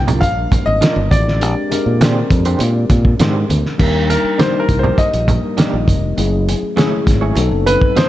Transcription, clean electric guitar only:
0, 0, Header, 1, 2, 480
1, 0, Start_track
1, 0, Key_signature, -3, "major"
1, 0, Tempo, 595770
1, 1138, Time_signature, 4, 2, 24, 8
1, 6517, End_track
2, 0, Start_track
2, 0, Title_t, "Clean electric guitar"
2, 0, Program_c, 0, 27
2, 61, Note_on_c, 0, 74, 55
2, 62, Note_on_c, 0, 70, 53
2, 65, Note_on_c, 0, 65, 48
2, 68, Note_on_c, 0, 62, 46
2, 189, Note_off_c, 0, 74, 0
2, 190, Note_off_c, 0, 70, 0
2, 191, Note_off_c, 0, 65, 0
2, 193, Note_off_c, 0, 62, 0
2, 654, Note_on_c, 0, 62, 74
2, 662, Note_on_c, 0, 65, 69
2, 666, Note_on_c, 0, 70, 76
2, 667, Note_on_c, 0, 74, 72
2, 822, Note_off_c, 0, 62, 0
2, 826, Note_off_c, 0, 65, 0
2, 828, Note_off_c, 0, 70, 0
2, 828, Note_off_c, 0, 74, 0
2, 1620, Note_on_c, 0, 56, 70
2, 1624, Note_on_c, 0, 62, 62
2, 1626, Note_on_c, 0, 67, 71
2, 1630, Note_on_c, 0, 72, 75
2, 1785, Note_off_c, 0, 56, 0
2, 1787, Note_off_c, 0, 62, 0
2, 1788, Note_off_c, 0, 67, 0
2, 1790, Note_off_c, 0, 72, 0
2, 1979, Note_on_c, 0, 72, 57
2, 1983, Note_on_c, 0, 62, 48
2, 1984, Note_on_c, 0, 67, 54
2, 1988, Note_on_c, 0, 56, 48
2, 2108, Note_off_c, 0, 72, 0
2, 2110, Note_off_c, 0, 62, 0
2, 2111, Note_off_c, 0, 67, 0
2, 2113, Note_off_c, 0, 56, 0
2, 2578, Note_on_c, 0, 56, 78
2, 2583, Note_on_c, 0, 62, 74
2, 2587, Note_on_c, 0, 67, 79
2, 2589, Note_on_c, 0, 72, 82
2, 2744, Note_off_c, 0, 56, 0
2, 2747, Note_off_c, 0, 62, 0
2, 2748, Note_off_c, 0, 67, 0
2, 2749, Note_off_c, 0, 72, 0
2, 3532, Note_on_c, 0, 62, 60
2, 3541, Note_on_c, 0, 67, 66
2, 3542, Note_on_c, 0, 70, 64
2, 3547, Note_on_c, 0, 74, 69
2, 3701, Note_off_c, 0, 62, 0
2, 3706, Note_off_c, 0, 67, 0
2, 3706, Note_off_c, 0, 70, 0
2, 3709, Note_off_c, 0, 74, 0
2, 3893, Note_on_c, 0, 70, 49
2, 3893, Note_on_c, 0, 74, 55
2, 3897, Note_on_c, 0, 67, 44
2, 3904, Note_on_c, 0, 62, 46
2, 4026, Note_off_c, 0, 70, 0
2, 4026, Note_off_c, 0, 74, 0
2, 4027, Note_off_c, 0, 67, 0
2, 4031, Note_off_c, 0, 62, 0
2, 4490, Note_on_c, 0, 62, 83
2, 4495, Note_on_c, 0, 67, 72
2, 4498, Note_on_c, 0, 70, 79
2, 4503, Note_on_c, 0, 74, 79
2, 4660, Note_off_c, 0, 62, 0
2, 4663, Note_off_c, 0, 67, 0
2, 4665, Note_off_c, 0, 70, 0
2, 4667, Note_off_c, 0, 74, 0
2, 5450, Note_on_c, 0, 57, 72
2, 5457, Note_on_c, 0, 64, 63
2, 5459, Note_on_c, 0, 68, 74
2, 5464, Note_on_c, 0, 73, 73
2, 5621, Note_off_c, 0, 57, 0
2, 5624, Note_off_c, 0, 64, 0
2, 5625, Note_off_c, 0, 68, 0
2, 5627, Note_off_c, 0, 73, 0
2, 5810, Note_on_c, 0, 73, 56
2, 5816, Note_on_c, 0, 64, 48
2, 5816, Note_on_c, 0, 68, 52
2, 5824, Note_on_c, 0, 57, 42
2, 5945, Note_off_c, 0, 73, 0
2, 5948, Note_off_c, 0, 64, 0
2, 5948, Note_off_c, 0, 68, 0
2, 5951, Note_off_c, 0, 57, 0
2, 6411, Note_on_c, 0, 60, 64
2, 6416, Note_on_c, 0, 66, 65
2, 6420, Note_on_c, 0, 69, 68
2, 6422, Note_on_c, 0, 75, 79
2, 6517, Note_off_c, 0, 60, 0
2, 6517, Note_off_c, 0, 66, 0
2, 6517, Note_off_c, 0, 69, 0
2, 6517, Note_off_c, 0, 75, 0
2, 6517, End_track
0, 0, End_of_file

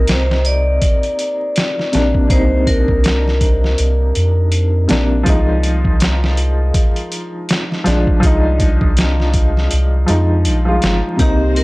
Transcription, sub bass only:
0, 0, Header, 1, 2, 480
1, 0, Start_track
1, 0, Tempo, 740741
1, 1492, Time_signature, 4, 2, 24, 8
1, 7541, End_track
2, 0, Start_track
2, 0, Title_t, "Sub bass"
2, 0, Program_c, 0, 38
2, 0, Note_on_c, 0, 36, 94
2, 513, Note_off_c, 0, 36, 0
2, 1260, Note_on_c, 0, 34, 92
2, 1378, Note_off_c, 0, 34, 0
2, 1491, Note_on_c, 0, 36, 93
2, 2432, Note_off_c, 0, 36, 0
2, 2457, Note_on_c, 0, 36, 97
2, 2670, Note_off_c, 0, 36, 0
2, 2698, Note_on_c, 0, 41, 97
2, 3156, Note_off_c, 0, 41, 0
2, 3177, Note_on_c, 0, 34, 96
2, 3390, Note_off_c, 0, 34, 0
2, 3411, Note_on_c, 0, 36, 87
2, 4352, Note_off_c, 0, 36, 0
2, 5098, Note_on_c, 0, 34, 96
2, 5217, Note_off_c, 0, 34, 0
2, 5334, Note_on_c, 0, 36, 95
2, 6273, Note_off_c, 0, 36, 0
2, 6303, Note_on_c, 0, 36, 97
2, 6513, Note_off_c, 0, 36, 0
2, 6539, Note_on_c, 0, 41, 103
2, 6779, Note_on_c, 0, 34, 103
2, 6789, Note_off_c, 0, 41, 0
2, 6991, Note_off_c, 0, 34, 0
2, 7021, Note_on_c, 0, 31, 102
2, 7139, Note_off_c, 0, 31, 0
2, 7255, Note_on_c, 0, 36, 98
2, 7541, Note_off_c, 0, 36, 0
2, 7541, End_track
0, 0, End_of_file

